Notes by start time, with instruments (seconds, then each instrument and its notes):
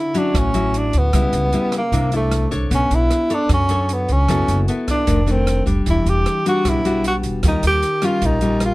Already playing: nylon-string guitar D3, tenor saxophone E4
0.14 nylon-string guitar F#3 C#4 E4, tenor saxophone D4, closed hi-hat
0.34 upright bass A1, nylon-string guitar A2, tenor saxophone C#4, kick, cross-stick, closed hi-hat
0.54 nylon-string guitar F#3 C#4 E4, closed hi-hat
0.74 tenor saxophone D4, closed hi-hat
0.93 upright bass D2, closed hi-hat
0.98 tenor saxophone B3
1.13 upright bass C#2, nylon-string guitar C#3 G3 B3 E4, kick, cross-stick, closed hi-hat
1.33 upright bass C#2, closed hi-hat
1.53 nylon-string guitar G3 B3 E4, closed hi-hat
1.72 cross-stick, closed hi-hat
1.78 tenor saxophone A#3
1.92 upright bass C2, nylon-string guitar C3 A#3 D4 E4, kick, closed hi-hat
2.12 nylon-string guitar D4 E4, closed hi-hat
2.16 tenor saxophone A3
2.31 cross-stick, closed hi-hat
2.51 upright bass C2, nylon-string guitar D4 A4 C#5, closed hi-hat
2.71 upright bass B1, nylon-string guitar B3, kick, closed hi-hat
2.75 tenor saxophone C#4
2.91 upright bass B1, closed hi-hat
2.95 tenor saxophone E4
3.10 cross-stick, closed hi-hat
3.30 nylon-string guitar D4 A4 C#5, closed hi-hat
3.34 tenor saxophone D4
3.49 upright bass F#2, nylon-string guitar F#3, kick, cross-stick, closed hi-hat
3.54 tenor saxophone C#4
3.69 nylon-string guitar D4 A4 C#5, closed hi-hat
3.89 tenor saxophone B3, closed hi-hat
4.09 upright bass C#2, tenor saxophone C#4, closed hi-hat
4.29 upright bass F#1, nylon-string guitar F#3 B3 E4 A4, kick, cross-stick, closed hi-hat
4.48 upright bass F#1, closed hi-hat
4.68 nylon-string guitar B3 E4 A4, closed hi-hat
4.88 tenor saxophone D4, kick, cross-stick, closed hi-hat
5.07 upright bass F1, nylon-string guitar F2 D#3 A3 D4, kick, closed hi-hat
5.26 nylon-string guitar D#3 A3 D4, closed hi-hat
5.31 tenor saxophone C4
5.47 cross-stick, closed hi-hat
5.66 upright bass F1, nylon-string guitar G3 D4, kick, closed hi-hat
5.86 upright bass E1, nylon-string guitar E3, kick, closed hi-hat
5.90 tenor saxophone E4
6.06 upright bass E1, tenor saxophone G4, closed hi-hat
6.26 cross-stick, closed hi-hat
6.46 nylon-string guitar G3 D4 F#4, tenor saxophone F#4, closed hi-hat
6.65 upright bass B1, nylon-string guitar B2, tenor saxophone E4, kick, cross-stick, closed hi-hat
6.85 nylon-string guitar G3 D4 F#4, closed hi-hat
7.04 tenor saxophone F#4, closed hi-hat
7.23 upright bass E1, closed hi-hat
7.43 upright bass D#2, nylon-string guitar D#3 G3 C#4 F4, kick, cross-stick, closed hi-hat
7.48 tenor saxophone D#4
7.63 upright bass D#2, closed hi-hat
7.67 tenor saxophone G4
7.83 closed hi-hat
8.02 nylon-string guitar G3 C#4 F4, tenor saxophone F4, cross-stick, closed hi-hat
8.21 upright bass A#1, nylon-string guitar A#2, kick, closed hi-hat
8.26 tenor saxophone D#4
8.41 nylon-string guitar G3 C#4 F4, closed hi-hat
8.60 cross-stick, closed hi-hat
8.65 tenor saxophone F4